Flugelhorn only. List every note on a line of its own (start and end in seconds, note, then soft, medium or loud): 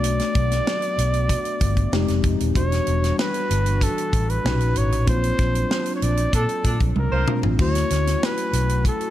0.00 2.22 D5 loud
2.56 3.15 C#5 loud
3.20 3.85 B4 medium
3.83 4.31 A4 medium
4.30 4.79 B4 medium
4.78 5.08 C#5 medium
5.09 5.92 C5 loud
5.96 6.05 C#5 medium
6.03 6.34 D5 loud
6.36 6.68 A4 loud
6.99 7.42 A#4 medium
7.61 8.26 C#5 loud
8.25 8.87 B4 medium
8.87 9.10 A4 medium